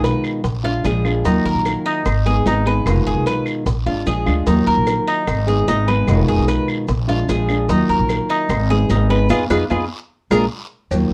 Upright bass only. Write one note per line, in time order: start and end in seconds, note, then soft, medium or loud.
0.00 0.13 B1 medium
0.44 0.82 A#1 loud
0.84 1.23 A#1 loud
1.25 1.44 D#2 loud
1.45 1.54 D#2 medium
1.55 1.74 A#1 medium
2.05 2.44 G#1 loud
2.45 2.84 G#1 medium
2.86 3.05 F1 medium
3.06 3.16 F1 medium
3.16 3.35 B1 medium
3.66 3.85 A#1 loud
3.86 4.05 G#1 medium
4.06 4.25 A#1 medium
4.27 4.45 D2 medium
4.47 4.66 D#2 loud
4.67 4.77 D#2 medium
4.77 4.96 A#1 medium
5.27 5.66 G#1 loud
5.68 6.06 G#1 medium
6.08 6.27 F1 loud
6.28 6.38 F1 medium
6.38 6.57 B1 medium
6.88 7.27 A#1 loud
7.28 7.67 A#1 loud
7.69 7.88 D#2 loud
7.89 7.98 D#2 medium
7.99 8.18 A#1 medium
8.49 8.88 G#1 loud
8.89 9.28 G#1 loud
9.30 9.45 F2 loud
9.50 9.65 F2 loud
9.70 9.85 F2 loud
10.30 10.46 A#1 medium
10.91 11.10 D#2 loud